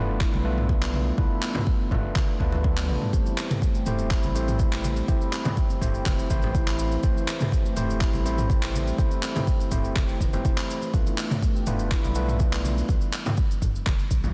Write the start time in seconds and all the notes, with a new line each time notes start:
Already playing: F1 A3 B3 D4 F4 B4
0.20 E4, kick, clap
0.33 B1 G3, high conga
0.45 A3 B3 D4 F4 B4
0.58 mid tom
0.69 E3, kick, high conga
0.82 clap
0.94 high conga
1.18 B1 A3 B3 D4 E4 F4 B4, kick, high conga
1.42 B3, clap
1.55 mid tom, high conga, low conga
1.67 kick
1.80 B3
1.91 F1 A3 B3 D4 F4 B4, kick, mid tom, high conga, low conga
2.15 kick, clap, high conga
2.40 D2 A3 B3 D4 F4 B4, kick, high conga
2.52 low conga
2.64 A4, kick, high tom, high conga
2.77 B3, clap, high tom
2.89 A1, mid tom
3.02 G3, mid tom
3.13 A1 A3 C4 E4 G4 C5, kick, cabasa
3.26 E3, cabasa
3.38 clap, cabasa
3.50 A3, mid tom, high conga, cabasa
3.62 E3, kick, cabasa
3.75 G4, cabasa
3.86 E1 A3 C4 E4 G4 C5, mid tom, cabasa
3.99 cabasa
4.10 E4, kick, clap, cabasa
4.23 A1 G3, high conga, cabasa
4.35 A3 C4 E4 G4 C5, cabasa
4.48 mid tom, cabasa
4.59 E3, kick, high conga, cabasa
4.72 clap, cabasa
4.84 high conga, cabasa
4.96 cabasa
5.08 A1 A3 C4 E4 G4 C5, kick, high conga, cabasa
5.21 cabasa
5.33 C4, clap, cabasa
5.45 mid tom, high conga, low conga, cabasa
5.57 kick, cabasa
5.70 C4, cabasa
5.82 E1 A3 C4 E4 G4 C5, kick, mid tom, cabasa
5.94 cabasa
6.06 E1, kick, clap, high conga, cabasa
6.19 cabasa
6.30 A1 E3 A3 C4 E4 G4 C5, kick, high conga, cabasa
6.42 low conga, cabasa
6.54 E4, kick, high conga, cabasa
6.68 clap, cabasa
6.79 cabasa
6.92 E3, cabasa
7.03 A1 A3 C4 E4 G4 C5, kick, cabasa
7.16 E3, cabasa
7.28 clap, cabasa
7.40 A3, mid tom, high conga, cabasa
7.52 E3, kick, cabasa
7.65 G4, cabasa
7.76 E1 A3 C4 E4 G4 C5, mid tom, cabasa
7.90 cabasa
8.01 E4, kick, clap, cabasa
8.14 A1 G3, high conga, cabasa
8.25 A3 C4 E4 G4 C5, cabasa
8.38 mid tom, cabasa
8.50 E3, kick, high conga, cabasa
8.62 clap, cabasa
8.75 high conga, cabasa
8.87 cabasa
8.98 A1 A3 C4 E4 G4 C5, kick, high conga, cabasa
9.11 cabasa
9.23 C4, clap, cabasa
9.36 mid tom, high conga, low conga, cabasa
9.47 kick, cabasa
9.60 C4, cabasa
9.71 E1 A3 C4 E4 G4 C5, kick, mid tom, cabasa
9.85 cabasa
9.95 E1, kick, clap, high conga, cabasa
10.09 cabasa
10.20 E1 E3, kick, high conga, cabasa
10.33 A3 C4 E4 G4 C5, low conga, cabasa
10.45 E1 E4, kick, high conga, cabasa
10.58 clap, cabasa
10.71 cabasa
10.82 E3, cabasa
10.93 B1 A3 B3 D4 F4 B4, kick, cabasa
11.06 E3, cabasa
11.18 clap, cabasa
11.31 A3, mid tom, high conga, cabasa
11.42 E3, kick, cabasa
11.55 G4, cabasa
11.66 F1 A3 B3 D4 F4 B4, mid tom, cabasa
11.79 cabasa
11.91 E4, kick, clap, cabasa
12.04 B1 G3, high conga, cabasa
12.15 A3 B3 D4 F4 B4, cabasa
12.29 mid tom, cabasa
12.40 E3, kick, high conga, cabasa
12.53 clap, cabasa
12.65 high conga, cabasa
12.78 cabasa
12.88 B1, kick, high conga, cabasa
13.01 cabasa
13.13 clap, cabasa
13.26 mid tom, high conga, low conga, cabasa
13.37 kick, cabasa
13.51 cabasa
13.62 F1, kick, mid tom, cabasa
13.75 cabasa
13.86 F1, kick, clap, high conga, cabasa
13.99 cabasa
14.11 B1, kick, high conga, cabasa
14.24 low conga, cabasa